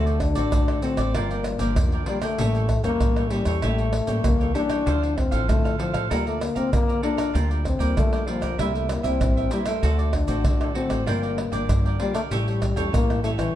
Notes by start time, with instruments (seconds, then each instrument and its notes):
Already playing: upright bass D2, nylon-string guitar D3 A3 C4 F#4, trombone A3
0.06 cavaquinho A4 C5 D5, pandeiro, shaker
0.20 trombone D4, muted cavaquinho stroke, pandeiro, tamborim, shaker, surdo
0.35 upright bass A1, nylon-string guitar A3 C4 F#4, cavaquinho A4 C5 D5, pandeiro, shaker
0.52 nylon-string guitar A2, upright bass D3, pandeiro, tamborim, shaker, surdo
0.68 cavaquinho A4 C5 D5, pandeiro, tamborim, shaker
0.82 nylon-string guitar A3 C4 F#4, trombone C4, cavaquinho F#4 A4 C5 D5, pandeiro, shaker
0.97 upright bass A1, cavaquinho A4 C5 D5, pandeiro, tamborim, shaker
1.14 upright bass G1, nylon-string guitar G2 F3 A#3 D4, trombone A#3, cavaquinho F4 A#4 D5 G5, pandeiro, tamborim, shaker, surdo
1.31 cavaquinho A#4 D5 G5, pandeiro, shaker
1.44 muted cavaquinho stroke, pandeiro, tamborim, shaker
1.59 upright bass G1, nylon-string guitar F3 A#3 D4, cavaquinho A#4 D5 G5, pandeiro, shaker
1.76 upright bass E2, nylon-string guitar D3, pandeiro, tamborim, shaker, surdo
1.92 cavaquinho A#4 D5 G5, pandeiro, shaker
2.06 nylon-string guitar F3 A#3 D4, trombone G3, cavaquinho F4 A#4 D5 G5, pandeiro
2.22 trombone A3, cavaquinho A#4 D5 G5, pandeiro, tamborim, shaker
2.38 upright bass A1, nylon-string guitar A2 G3 A#3 C#4, cavaquinho G4 A4 C#5 G5, pandeiro, shaker, surdo
2.55 cavaquinho A4 C#5 G5, pandeiro, shaker
2.69 muted cavaquinho stroke, pandeiro, tamborim, shaker, surdo
2.83 upright bass E2, nylon-string guitar G3 A#3 C#4, trombone A#3, cavaquinho A4 C#5 G5, pandeiro, shaker
3.00 upright bass A2, nylon-string guitar E3, pandeiro, tamborim, shaker, surdo
3.16 cavaquinho A4 C#5 G5, pandeiro, tamborim, shaker
3.30 nylon-string guitar G3 A#3 C#4, trombone G3, cavaquinho G4 A4 C#5 G5, pandeiro, shaker
3.45 upright bass E2, cavaquinho A4 C#5 G5, pandeiro, tamborim, shaker
3.62 upright bass A1, nylon-string guitar A2 G3 A#3 C#4, trombone A3, cavaquinho G4 A4 C#5 G5, pandeiro, tamborim, shaker, surdo
3.78 cavaquinho A4 C#5 G5, pandeiro, shaker
3.93 muted cavaquinho stroke, pandeiro, tamborim
4.07 upright bass A1, nylon-string guitar G3 A#3 C#4, cavaquinho A4 C#5 G5, pandeiro, shaker
4.24 upright bass C#2, nylon-string guitar E3, trombone A#3, pandeiro, tamborim, shaker, surdo
4.40 cavaquinho A4 C#5 G5, pandeiro, shaker
4.54 nylon-string guitar G3 A#3 C#4, trombone D4, cavaquinho G4 A4 C#5 G5, pandeiro, shaker
4.69 cavaquinho A4 C#5 G5, pandeiro, tamborim, shaker
4.86 upright bass D2, nylon-string guitar D3 F3 C4 E4, cavaquinho D4 A4 C5 F5, pandeiro, shaker, surdo
5.02 cavaquinho A4 C5 F5, pandeiro, shaker
5.17 trombone C4, muted cavaquinho stroke, pandeiro, tamborim, surdo
5.31 upright bass A1, nylon-string guitar F3 C4 E4, cavaquinho A4 C5 F5, pandeiro, shaker
5.49 nylon-string guitar A2, upright bass D3, trombone A3, pandeiro, tamborim, shaker, surdo
5.64 cavaquinho A4 C5 F5, pandeiro, tamborim, shaker
5.78 nylon-string guitar F3 C4 E4, trombone F3, cavaquinho D4 A4 C5 F5, pandeiro
5.93 upright bass A1, cavaquinho A4 C5 F5, pandeiro, tamborim, shaker
6.10 upright bass D2, nylon-string guitar D3 A#3 F4 A4, trombone G3, cavaquinho A4 D5 F5 A#5, pandeiro, tamborim, shaker, surdo
6.26 trombone A3, cavaquinho D5 F5 A#5, pandeiro, shaker
6.40 trombone A#3, muted cavaquinho stroke, pandeiro, tamborim, shaker
6.55 upright bass D2, nylon-string guitar A#3 F4 A4, trombone C4, cavaquinho D5 F5 A#5, pandeiro, shaker
6.73 upright bass D3, nylon-string guitar D3, trombone A#3, pandeiro, tamborim, shaker, surdo
6.88 cavaquinho D5 F5 A#5, pandeiro, shaker
7.02 nylon-string guitar A#3 F4 A4, trombone D4, cavaquinho A4 D5 F5 A#5, pandeiro
7.17 cavaquinho D5 F5 A#5, pandeiro, tamborim, shaker
7.34 upright bass D2, nylon-string guitar D3 G3 A#3 F4, cavaquinho F4 A#4 D5 G5, pandeiro, shaker, surdo
7.50 cavaquinho A#4 D5 G5, pandeiro, shaker
7.64 trombone C4, muted cavaquinho stroke, pandeiro, tamborim, shaker, surdo
7.79 upright bass D2, nylon-string guitar G3 A#3 F4, cavaquinho A#4 D5 G5, pandeiro, shaker
7.97 upright bass D3, nylon-string guitar D3, trombone A3, pandeiro, tamborim, shaker, surdo
8.12 cavaquinho A#4 D5 G5, pandeiro, tamborim, shaker
8.27 trombone F3, nylon-string guitar G3 A#3 F4, cavaquinho F4 A#4 D5 G5, pandeiro
8.41 upright bass B1, cavaquinho A#4 D5 G5, pandeiro, tamborim, shaker
8.58 upright bass C2, nylon-string guitar C3 G3 A#3 E4, trombone G3, cavaquinho E4 A#4 C5 E5, pandeiro, tamborim, shaker, surdo
8.74 trombone A3, cavaquinho A#4 C5 E5, pandeiro, shaker
8.89 trombone A#3, muted cavaquinho stroke, pandeiro, tamborim, shaker
9.03 upright bass C2, nylon-string guitar G3 A#3 E4, trombone C4, cavaquinho A#4 C5 E5, pandeiro, shaker
9.21 upright bass A1, nylon-string guitar G2, pandeiro, tamborim, shaker, surdo
9.37 cavaquinho A#4 C5 E5, pandeiro, shaker
9.51 nylon-string guitar G3 A#3 E4, trombone G3, cavaquinho E4 A#4 C5 E5, pandeiro, shaker
9.66 trombone A3, cavaquinho A#4 C5 E5, pandeiro, tamborim, shaker
9.83 upright bass D2, nylon-string guitar D3 A3 C4 F#4, cavaquinho F#4 A4 C5 D5, pandeiro, shaker, surdo
9.99 cavaquinho A4 C5 D5, pandeiro, shaker
10.13 trombone D4, muted cavaquinho stroke, pandeiro, tamborim, surdo
10.27 upright bass A1, nylon-string guitar A3 C4 F#4, cavaquinho A4 C5 D5, pandeiro, shaker
10.45 nylon-string guitar A2, upright bass D3, pandeiro, tamborim, shaker, surdo
10.60 cavaquinho A4 C5 D5, pandeiro, tamborim, shaker
10.75 nylon-string guitar A3 C4 F#4, trombone C4, cavaquinho F#4 A4 C5 D5, pandeiro
10.89 upright bass A1, cavaquinho A4 C5 D5, pandeiro, tamborim, shaker
11.06 upright bass G1, nylon-string guitar G2 F3 A#3 D4, trombone A#3, cavaquinho F4 A#4 D5 G5, pandeiro, tamborim, shaker, surdo
11.22 cavaquinho A#4 D5 G5, pandeiro, shaker
11.37 muted cavaquinho stroke, pandeiro, tamborim
11.52 upright bass G1, nylon-string guitar F3 A#3 D4, cavaquinho A#4 D5 G5, pandeiro, shaker
11.69 upright bass G2, nylon-string guitar D3, pandeiro, tamborim, shaker, surdo
11.85 cavaquinho A#4 D5 G5, pandeiro, shaker
11.99 nylon-string guitar F3 A#3 D4, trombone G3, cavaquinho F4 A#4 D5 G5, pandeiro
12.14 trombone A3, cavaquinho A#4 D5 G5, pandeiro, tamborim, shaker
12.31 upright bass A1, nylon-string guitar A2 G3 C#4 E4, trombone G3, cavaquinho G4 A4 C#5 G5, pandeiro, shaker, surdo
12.47 cavaquinho A4 C#5 G5, pandeiro, shaker
12.62 muted cavaquinho stroke, pandeiro, tamborim, shaker, surdo
12.76 upright bass E2, nylon-string guitar G3 C#4 E4, cavaquinho A4 C#5 G5, pandeiro, shaker
12.93 upright bass A2, nylon-string guitar E3, trombone A#3, pandeiro, tamborim, shaker, surdo
13.09 cavaquinho A4 C#5 G5, pandeiro, tamborim, shaker
13.24 nylon-string guitar G3 C#4 E4, trombone A3, cavaquinho G4 A4 C#5 G5, pandeiro, shaker
13.38 upright bass A#1, trombone E3, cavaquinho A4 C#5 G5, pandeiro, tamborim, shaker